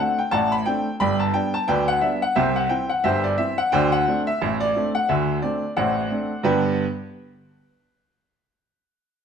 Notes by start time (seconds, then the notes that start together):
0.00 A3 C4 D4 F#5
0.18 G5
0.31 A1 A2 D5 F#5 A5
0.52 B5
0.66 A3 C4 D4 G5
1.00 G1 G2 D5 G5 B5
1.20 A5
1.34 G3 B3 D4 G5
1.54 A5
1.68 D2 D3 B4 D5 G5
1.88 F#5
2.01 G3 B3 D4 E5
2.22 F#5
2.36 C2 C3 G4 C5 E5
2.56 F#5
2.69 E3 C4 E4 G5
2.89 F#5
3.04 G1 G2 G4 C5 E5
3.24 D5
3.38 E3 C4 E4 E5
3.58 F#5
3.72 D2 D3 C5 D5 G5
3.92 F#5
4.07 A3 C4 D4
4.27 E5
4.42 A1 A2
4.60 D5
4.75 A3 C4 D4
4.95 F#5
5.09 D2 D3 E5
5.42 A3 C4 D4 D5
5.77 A1 A2 C5 D5 F#5
6.11 A3 C4 D4
6.43 G2 D3 B3 D4 G4 B4 G5